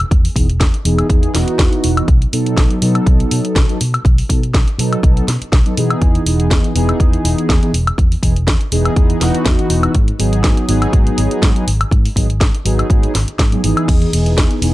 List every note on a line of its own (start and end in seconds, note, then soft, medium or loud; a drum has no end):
0.11 0.27 E2 loud
0.11 kick loud
0.11 closed hi-hat medium
0.25 open hi-hat medium
0.35 0.62 E1 medium
0.35 0.46 E3 medium
0.35 0.46 B3 medium
0.35 0.46 D#4 medium
0.35 0.46 G#4 medium
0.35 kick medium
0.35 open hi-hat loud
0.49 closed hi-hat soft
0.60 0.69 E2 medium
0.60 kick loud
0.60 snare loud
0.60 closed hi-hat medium
0.74 closed hi-hat soft
0.85 1.01 E1 loud
0.85 1.07 E3 medium
0.85 1.07 B3 medium
0.85 1.07 D#4 medium
0.85 1.07 G#4 loud
0.85 open hi-hat loud
0.99 closed hi-hat soft
0.99 high woodblock medium
1.09 1.25 E2 medium
1.09 1.31 E3 medium
1.09 1.31 B3 medium
1.09 1.32 D#4 medium
1.09 1.32 G#4 loud
1.09 kick loud
1.09 closed hi-hat medium
1.23 closed hi-hat soft
1.33 1.43 E1 medium
1.33 2.06 E3 loud
1.33 2.06 B3 medium
1.33 2.07 D#4 medium
1.33 2.07 F#4 loud
1.33 snare medium
1.33 open hi-hat loud
1.48 closed hi-hat soft
1.59 1.67 E2 medium
1.59 kick loud
1.59 snare loud
1.59 closed hi-hat medium
1.73 closed hi-hat soft
1.84 2.00 E1 medium
1.84 open hi-hat loud
1.97 closed hi-hat soft
1.97 high woodblock medium
2.08 2.24 B1 loud
2.08 kick loud
2.08 closed hi-hat medium
2.22 closed hi-hat soft
2.32 2.59 B2 medium
2.32 2.79 F#3 medium
2.32 2.79 B3 medium
2.32 2.79 D#4 medium
2.32 2.79 A4 medium
2.32 open hi-hat loud
2.46 closed hi-hat soft
2.57 2.65 B1 medium
2.57 kick loud
2.57 snare loud
2.57 closed hi-hat medium
2.70 closed hi-hat soft
2.81 2.98 B2 loud
2.81 3.65 F#3 medium
2.81 3.65 B3 medium
2.81 3.66 D#4 medium
2.81 3.66 A4 loud
2.81 open hi-hat loud
2.95 closed hi-hat soft
2.95 high woodblock medium
3.06 3.22 B1 medium
3.06 kick loud
3.06 closed hi-hat medium
3.20 closed hi-hat soft
3.31 3.39 B2 medium
3.31 open hi-hat loud
3.45 closed hi-hat soft
3.56 3.64 B1 medium
3.56 kick loud
3.56 snare loud
3.56 closed hi-hat medium
3.69 3.78 F#3 medium
3.69 3.78 B3 medium
3.69 3.78 D#4 medium
3.69 3.78 A4 medium
3.69 closed hi-hat soft
3.81 3.96 B2 medium
3.81 open hi-hat loud
3.94 closed hi-hat soft
3.94 high woodblock medium
4.05 4.21 B1 loud
4.05 kick loud
4.05 closed hi-hat medium
4.18 open hi-hat medium
4.29 4.56 B2 medium
4.29 4.39 F#3 medium
4.29 4.40 B3 medium
4.29 4.40 D#4 medium
4.29 4.40 A4 medium
4.29 kick medium
4.29 open hi-hat loud
4.43 closed hi-hat soft
4.54 4.62 B1 medium
4.54 kick loud
4.54 snare loud
4.54 closed hi-hat medium
4.68 closed hi-hat soft
4.78 4.94 B2 loud
4.78 5.00 F#3 medium
4.78 5.01 B3 medium
4.78 5.01 D#4 medium
4.78 5.01 A4 medium
4.78 open hi-hat loud
4.93 closed hi-hat soft
4.93 high woodblock medium
5.03 5.19 B1 medium
5.03 5.25 F#3 medium
5.03 5.25 B3 medium
5.03 5.25 D#4 medium
5.03 5.25 A4 medium
5.03 kick loud
5.03 closed hi-hat medium
5.17 closed hi-hat soft
5.28 5.36 B2 medium
5.28 snare medium
5.28 open hi-hat loud
5.41 muted fingered electric bass stroke soft
5.41 closed hi-hat soft
5.52 5.60 B1 medium
5.52 kick loud
5.52 snare loud
5.52 closed hi-hat medium
5.65 5.74 F#3 medium
5.65 5.74 B3 medium
5.65 5.74 D#4 medium
5.65 5.75 A4 loud
5.65 closed hi-hat soft
5.77 5.93 B2 medium
5.77 6.23 E3 medium
5.77 6.23 B3 medium
5.77 6.24 D#4 medium
5.77 6.24 G#4 loud
5.77 open hi-hat loud
5.90 closed hi-hat soft
5.90 high woodblock medium
6.01 6.17 E2 loud
6.01 kick loud
6.01 closed hi-hat medium
6.15 closed hi-hat soft
6.26 6.52 E1 medium
6.26 6.72 E3 medium
6.26 6.73 B3 medium
6.26 6.73 D#4 medium
6.26 6.73 G#4 medium
6.26 open hi-hat loud
6.40 closed hi-hat soft
6.51 6.59 E2 medium
6.51 kick loud
6.51 snare loud
6.51 closed hi-hat medium
6.64 closed hi-hat soft
6.75 6.91 E1 loud
6.75 7.59 E3 medium
6.75 7.59 B3 medium
6.75 7.59 D#4 medium
6.75 7.60 G#4 loud
6.75 open hi-hat loud
6.89 closed hi-hat soft
6.89 high woodblock medium
7.00 7.16 E2 medium
7.00 kick loud
7.00 closed hi-hat medium
7.13 closed hi-hat soft
7.24 7.33 E1 medium
7.24 open hi-hat loud
7.38 closed hi-hat soft
7.49 7.57 E2 medium
7.49 kick loud
7.49 snare loud
7.49 closed hi-hat medium
7.62 7.71 E3 medium
7.62 7.71 B3 medium
7.62 7.71 D#4 medium
7.62 7.71 G#4 medium
7.62 closed hi-hat soft
7.73 7.89 E1 medium
7.73 open hi-hat loud
7.87 closed hi-hat soft
7.87 high woodblock medium
7.98 8.14 E2 loud
7.98 kick loud
7.98 closed hi-hat medium
8.12 open hi-hat medium
8.22 8.49 E1 medium
8.22 8.33 E3 medium
8.22 8.33 B3 medium
8.22 8.33 D#4 medium
8.22 8.33 G#4 medium
8.22 kick medium
8.22 open hi-hat loud
8.36 closed hi-hat soft
8.47 8.55 E2 medium
8.47 kick loud
8.47 snare loud
8.47 closed hi-hat medium
8.61 closed hi-hat soft
8.71 8.88 E1 loud
8.71 8.93 E3 medium
8.71 8.94 B3 medium
8.71 8.94 D#4 medium
8.71 8.94 G#4 loud
8.71 open hi-hat loud
8.85 closed hi-hat soft
8.85 high woodblock medium
8.96 9.12 E2 medium
8.96 9.18 E3 medium
8.96 9.18 B3 medium
8.96 9.18 D#4 medium
8.96 9.18 G#4 medium
8.96 kick loud
8.96 closed hi-hat medium
9.10 closed hi-hat soft
9.20 9.29 E1 medium
9.20 9.93 E3 loud
9.20 9.93 B3 medium
9.20 9.94 D#4 medium
9.20 9.94 F#4 loud
9.20 snare medium
9.20 open hi-hat loud
9.35 closed hi-hat soft
9.46 9.54 E2 medium
9.46 kick loud
9.46 snare loud
9.46 closed hi-hat medium
9.59 closed hi-hat soft
9.70 9.86 E1 medium
9.70 open hi-hat loud
9.83 closed hi-hat soft
9.83 high woodblock medium
9.95 10.11 G#2 loud
9.95 kick loud
9.95 closed hi-hat medium
10.08 closed hi-hat soft
10.18 10.46 G#1 medium
10.18 10.65 F#3 medium
10.18 10.66 B3 medium
10.18 10.66 D#4 medium
10.18 10.66 G#4 medium
10.18 open hi-hat loud
10.33 closed hi-hat soft
10.44 10.52 G#2 medium
10.44 kick loud
10.44 snare loud
10.44 closed hi-hat medium
10.57 closed hi-hat soft
10.67 10.85 G#1 loud
10.67 11.52 F#3 medium
10.67 11.52 B3 medium
10.67 11.52 D#4 medium
10.67 11.53 G#4 loud
10.67 open hi-hat loud
10.82 closed hi-hat soft
10.82 high woodblock medium
10.93 11.09 G#2 medium
10.93 kick loud
10.93 closed hi-hat medium
11.07 closed hi-hat soft
11.18 11.26 G#1 medium
11.18 open hi-hat loud
11.31 closed hi-hat soft
11.42 11.50 G#2 medium
11.42 kick loud
11.42 snare loud
11.42 closed hi-hat medium
11.55 11.64 F#3 medium
11.55 11.64 B3 medium
11.55 11.65 D#4 medium
11.55 11.65 G#4 medium
11.55 closed hi-hat soft
11.67 11.83 G#1 medium
11.67 open hi-hat loud
11.81 closed hi-hat soft
11.81 high woodblock medium
11.91 12.07 G#2 loud
11.91 kick loud
11.91 closed hi-hat medium
12.05 open hi-hat medium
12.16 12.42 G#1 medium
12.16 12.26 F#3 medium
12.16 12.26 B3 medium
12.16 12.26 D#4 medium
12.16 12.27 G#4 medium
12.16 kick medium
12.16 open hi-hat loud
12.30 closed hi-hat soft
12.41 12.49 G#2 medium
12.41 kick loud
12.41 snare loud
12.41 closed hi-hat medium
12.55 closed hi-hat soft
12.65 12.81 G#1 loud
12.65 12.87 F#3 medium
12.65 12.87 B3 medium
12.65 12.87 D#4 medium
12.65 12.87 G#4 loud
12.65 open hi-hat loud
12.79 closed hi-hat soft
12.79 high woodblock medium
12.90 13.06 G#2 medium
12.90 13.12 F#3 medium
12.90 13.12 B3 medium
12.90 13.12 D#4 medium
12.90 13.13 G#4 medium
12.90 kick loud
12.90 closed hi-hat medium
13.03 closed hi-hat soft
13.15 13.23 G#1 medium
13.15 snare medium
13.15 open hi-hat loud
13.28 muted fingered electric bass stroke soft
13.28 closed hi-hat soft
13.39 13.55 G#2 medium
13.39 kick loud
13.39 snare loud
13.39 closed hi-hat medium
13.52 13.61 F#3 medium
13.52 13.61 B3 medium
13.52 13.61 D#4 medium
13.52 13.61 G#4 loud
13.52 closed hi-hat soft
13.63 13.72 G#1 medium
13.63 14.10 E3 loud
13.63 14.10 B3 medium
13.63 14.10 D#4 medium
13.63 14.11 G#4 loud
13.63 open hi-hat loud
13.77 closed hi-hat soft
13.77 high woodblock medium
13.88 14.04 E2 loud
13.88 kick loud
13.88 closed hi-hat medium
13.88 crash medium
13.88 ride medium
14.02 closed hi-hat soft
14.13 14.39 E1 medium
14.13 14.59 E3 medium
14.13 14.60 B3 medium
14.13 14.60 D#4 medium
14.13 14.60 G#4 medium
14.13 open hi-hat loud
14.13 ride medium
14.26 closed hi-hat soft
14.38 14.46 E2 medium
14.38 kick loud
14.38 snare loud
14.38 closed hi-hat medium
14.38 ride medium
14.51 closed hi-hat soft
14.61 14.74 E1 loud
14.61 14.74 E3 medium
14.61 14.74 B3 medium
14.61 14.74 D#4 medium
14.61 14.74 G#4 loud
14.61 open hi-hat loud
14.61 ride medium